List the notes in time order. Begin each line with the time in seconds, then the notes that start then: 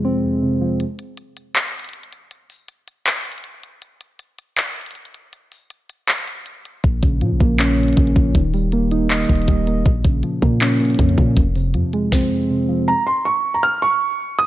Already playing: F2 C3 F3 G#3
0.05 C4
0.23 F2
0.42 C3
0.61 F3
0.80 closed hi-hat
0.99 closed hi-hat
1.17 closed hi-hat
1.37 closed hi-hat
1.55 clap, closed hi-hat
1.74 closed hi-hat
1.79 closed hi-hat
1.85 closed hi-hat
1.89 closed hi-hat
1.93 closed hi-hat
2.03 closed hi-hat
2.13 closed hi-hat
2.31 closed hi-hat
2.50 open hi-hat
2.68 closed hi-hat
2.88 closed hi-hat
3.07 clap, closed hi-hat
3.12 closed hi-hat
3.17 closed hi-hat
3.21 closed hi-hat
3.25 closed hi-hat
3.32 closed hi-hat
3.38 closed hi-hat
3.44 closed hi-hat
3.63 closed hi-hat
3.82 closed hi-hat
4.01 closed hi-hat
4.19 closed hi-hat
4.39 closed hi-hat
4.57 clap, closed hi-hat
4.76 closed hi-hat
4.81 closed hi-hat
4.86 closed hi-hat
4.91 closed hi-hat
4.95 closed hi-hat
5.05 closed hi-hat
5.14 closed hi-hat
5.33 closed hi-hat
5.52 open hi-hat
5.70 closed hi-hat
5.90 closed hi-hat
6.08 clap, closed hi-hat
6.18 closed hi-hat
6.28 closed hi-hat
6.46 closed hi-hat
6.65 closed hi-hat
6.84 A#1 A#2, kick, closed hi-hat
7.03 A#1 C#3, kick, closed hi-hat
7.21 A#2 F3, closed hi-hat
7.32 A#1
7.40 A#1 A#3, kick, closed hi-hat
7.59 C#4, clap, closed hi-hat
7.78 A#2, closed hi-hat
7.83 closed hi-hat
7.88 closed hi-hat
7.93 closed hi-hat
7.97 A#1 C#3, kick, closed hi-hat
8.07 closed hi-hat
8.16 A#1 F3, kick, closed hi-hat
8.35 D#1 D#3, kick, closed hi-hat
8.54 G3, open hi-hat
8.72 A#3, closed hi-hat
8.91 D#4, closed hi-hat
9.10 D#5, clap, closed hi-hat
9.15 closed hi-hat
9.20 closed hi-hat
9.25 closed hi-hat
9.29 D#1 D#3, kick, closed hi-hat
9.35 closed hi-hat
9.42 closed hi-hat
9.48 D#1 G3, kick, closed hi-hat
9.67 A#3, closed hi-hat
9.86 A#1 A#2, kick, closed hi-hat
10.05 A#1 C#3, kick, closed hi-hat
10.23 F3, closed hi-hat
10.42 A#2 A#3, kick, closed hi-hat
10.61 C#4, clap, closed hi-hat
10.80 A#2, closed hi-hat
10.85 closed hi-hat
10.90 closed hi-hat
10.95 closed hi-hat
10.99 F2 C#3, kick, closed hi-hat
11.09 closed hi-hat
11.18 A#2 F3, kick, closed hi-hat
11.37 F1 F2, kick, closed hi-hat
11.56 C3, open hi-hat
11.74 F2 F3, closed hi-hat
11.93 G#3, closed hi-hat
12.12 C4, kick, snare
12.31 F2
12.50 C3
12.69 F3
12.88 A#5
13.07 C6
13.25 C#6
13.54 A#5
13.63 F6
13.82 C#6
14.39 D#6